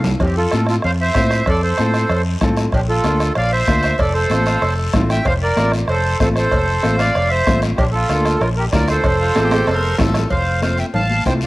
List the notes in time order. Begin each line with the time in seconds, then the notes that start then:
Already playing: C2 C4 F4 A4 F5
0.04 low conga, low timbale, short guiro
0.20 F2 C4 G4, bombo low, bombo rim, cowbell, high conga, long guiro
0.37 F4 A4
0.51 A2 C4 F4 A4, bombo rim, high conga, short guiro
0.67 F4 A4, bombo rim, short guiro
0.82 F2 C5 F5, bombo rim, cowbell, high conga, long guiro
1.01 C5 E5
1.15 A2 C4 F4 C5, bombo low, bombo rim, high conga, short guiro
1.31 bombo rim, short guiro
1.46 F2 A4 D5, bombo low, bombo rim, cowbell, high conga, long guiro
1.63 A4 C5
1.78 A2 C4 F4 A4, bombo rim, high conga, short guiro
1.94 bombo rim, short guiro
2.09 F2, bombo rim, cowbell, high conga, long guiro
2.41 A2 C4 F4 A4, bombo low, bombo rim, high conga, low conga, short guiro
2.57 bombo rim, short guiro
2.72 A#1 D4 G4, bombo low, bombo rim, cowbell, high conga, long guiro
2.89 F4 A4
3.04 D2 A#3 D4 F4, bombo rim, high conga, short guiro
3.20 bombo rim, short guiro
3.35 A#1 D5 F5, bombo rim, cowbell, high conga, long guiro
3.52 C5 E5
3.67 D2 A#3 D4 F4, bombo low, bombo rim, high conga, short guiro
3.83 bombo rim, short guiro
3.98 F1 A4 D5, bombo low, bombo rim, cowbell, high conga, long guiro
4.13 A4 C5
4.30 A1 A3 C4 F4, bombo rim, high conga, short guiro
4.45 F4, bombo rim, short guiro
4.62 F1 A4, bombo rim, cowbell, long guiro
4.93 A1 A3 C4 F4, bombo low, bombo rim, high conga, low conga, low timbale, short guiro
5.10 E5 G5, bombo rim, short guiro
5.25 F1 C5 F5, bombo low, bombo rim, cowbell, high conga, long guiro
5.42 A#4 D5
5.57 A1 A3 C4 F4, bombo rim, high conga, short guiro
5.72 bombo rim, short guiro
5.88 F1 A4 C5, bombo rim, cowbell, high conga, long guiro
6.20 A1 A3 C4 F4 A4 C5, bombo low, bombo rim, high conga, short guiro
6.36 A4 C5, bombo rim, short guiro
6.51 F1, bombo low, bombo rim, cowbell, high conga, long guiro
6.83 A1 A3 C4 F4, bombo rim, high conga, short guiro
6.98 D5 F5, bombo rim, short guiro
7.15 F1, bombo rim, cowbell, high conga, long guiro
7.29 C5 E5
7.47 A1 A3 C4 F4, bombo low, bombo rim, high conga, low conga, short guiro
7.62 bombo rim, short guiro
7.77 A#1 D4 G4, bombo low, bombo rim, cowbell, high conga, long guiro
7.92 F4 A4
8.09 D2 A#3 D4 F4, bombo rim, high conga, short guiro
8.25 bombo rim, short guiro
8.39 A#1 F4 A#4, bombo rim, cowbell, high conga, long guiro
8.57 G4 A#4
8.72 D2 A#3 D4 F4 A#4 D5, bombo low, bombo rim, high conga, low timbale, short guiro
8.88 A4 C5, bombo rim, short guiro
9.04 F1, bombo low, bombo rim, cowbell, long guiro
9.21 F4
9.35 A1 A3 C4 F4 A4, bombo rim, high conga, high timbale, short guiro
9.44 G4
9.51 bombo rim, high timbale, short guiro
9.67 F1 A4, bombo rim, cowbell, high conga, high timbale, long guiro
9.75 A#4
9.98 A1 A3 C4 F4 A4, bombo low, bombo rim, high conga, low conga, low timbale, short guiro
10.14 bombo rim, low timbale, short guiro
10.30 F1 C5 F5, bombo low, cowbell, long guiro
10.62 A3 C4 F4 C5 F5, bombo rim, cowbell, high conga, short guiro
10.77 E5 G5, short guiro
10.94 A1 F5 A5, cowbell, low conga, long guiro
11.10 high conga
11.25 C2 A3 C4 F4 C5 G5, bombo low, bombo rim, cowbell, high conga, low conga, low timbale, short guiro
11.41 short guiro